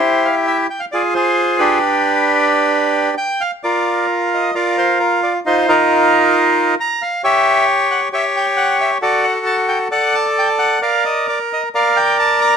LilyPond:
\new Staff \with { instrumentName = "Bandoneon" } { \time 4/4 \key g \phrygian \tempo 4 = 134 << { c''8 f''8 e''8 g''16 f''16 d''8 c''4 b'8~ | b'2. g''8 f''8 | \key c \dorian d''4 r8 ees''8 d''8 c''8 bes'8 d''8 | c''8 bes'2~ bes'8 bes''8 f''8 |
e''4 r8 fis''8 e''8 g''8 fis''8 e''8 | d''8 fis''8 a''8 g''8 fis''8 a''8 g''8 fis''8 | f''8 ees''8 d''8 ees''8 f''8 g''8 a''8 bes''8 | } \\ { <e' g'>4. r8 <f' aes'>8 <f' aes'>4 <d' g'>8~ | <d' g'>2. r4 | <f' bes'>2 <f' bes'>2 | <ees' f'>8 <ees' f'>2~ <ees' f'>8 r4 |
<g' cis''>2 <g' cis''>2 | <fis' a'>2 <a' d''>2 | <bes' d''>2 <bes' d''>2 | } >> }